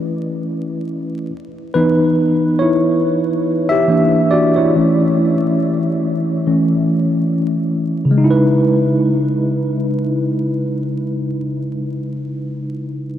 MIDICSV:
0, 0, Header, 1, 2, 480
1, 0, Start_track
1, 0, Key_signature, 4, "minor"
1, 0, Tempo, 857143
1, 732, Time_signature, 4, 2, 24, 8
1, 7384, End_track
2, 0, Start_track
2, 0, Title_t, "Tine electric piano"
2, 0, Program_c, 0, 4
2, 0, Control_c, 0, 64, 127
2, 0, Note_on_c, 0, 52, 49
2, 0, Note_on_c, 0, 57, 46
2, 0, Note_on_c, 0, 61, 60
2, 714, Note_off_c, 0, 52, 0
2, 717, Note_off_c, 0, 57, 0
2, 717, Note_off_c, 0, 61, 0
2, 740, Control_c, 0, 64, 0
2, 825, Control_c, 0, 64, 127
2, 975, Note_on_c, 0, 71, 83
2, 979, Note_on_c, 0, 52, 50
2, 982, Note_on_c, 0, 59, 51
2, 986, Note_on_c, 0, 63, 64
2, 1306, Note_off_c, 0, 52, 0
2, 1307, Note_off_c, 0, 59, 0
2, 1310, Note_off_c, 0, 63, 0
2, 1450, Note_on_c, 0, 73, 83
2, 1464, Note_on_c, 0, 64, 66
2, 1468, Note_off_c, 0, 71, 0
2, 2050, Note_off_c, 0, 64, 0
2, 2067, Note_on_c, 0, 76, 105
2, 2078, Note_on_c, 0, 67, 70
2, 2083, Note_off_c, 0, 73, 0
2, 2173, Note_on_c, 0, 52, 48
2, 2177, Note_on_c, 0, 58, 46
2, 2180, Control_c, 0, 64, 0
2, 2183, Note_on_c, 0, 62, 56
2, 2274, Control_c, 0, 64, 127
2, 2390, Note_off_c, 0, 76, 0
2, 2396, Note_off_c, 0, 67, 0
2, 2412, Note_on_c, 0, 74, 93
2, 2422, Note_on_c, 0, 66, 63
2, 2542, Note_off_c, 0, 66, 0
2, 2550, Note_off_c, 0, 74, 0
2, 2554, Note_on_c, 0, 73, 74
2, 2562, Note_on_c, 0, 64, 63
2, 2630, Note_off_c, 0, 52, 0
2, 2632, Note_off_c, 0, 58, 0
2, 2635, Note_off_c, 0, 62, 0
2, 2660, Control_c, 0, 64, 0
2, 2662, Note_on_c, 0, 52, 51
2, 2665, Note_on_c, 0, 57, 47
2, 2666, Note_on_c, 0, 61, 55
2, 2768, Control_c, 0, 64, 127
2, 2987, Note_off_c, 0, 52, 0
2, 2988, Note_off_c, 0, 57, 0
2, 2989, Note_off_c, 0, 61, 0
2, 3624, Note_on_c, 0, 52, 48
2, 3627, Note_on_c, 0, 57, 39
2, 3628, Note_on_c, 0, 61, 49
2, 3835, Note_off_c, 0, 52, 0
2, 3837, Note_off_c, 0, 57, 0
2, 3838, Note_off_c, 0, 61, 0
2, 4074, Note_off_c, 0, 73, 0
2, 4078, Note_off_c, 0, 64, 0
2, 4510, Note_on_c, 0, 49, 66
2, 4543, Note_on_c, 0, 56, 68
2, 4579, Control_c, 0, 64, 0
2, 4580, Note_on_c, 0, 63, 68
2, 4617, Note_on_c, 0, 64, 68
2, 4651, Note_on_c, 0, 71, 84
2, 4672, Control_c, 0, 64, 127
2, 6235, Note_off_c, 0, 49, 0
2, 6268, Note_off_c, 0, 56, 0
2, 6305, Note_off_c, 0, 63, 0
2, 6342, Note_off_c, 0, 64, 0
2, 6376, Note_off_c, 0, 71, 0
2, 7384, End_track
0, 0, End_of_file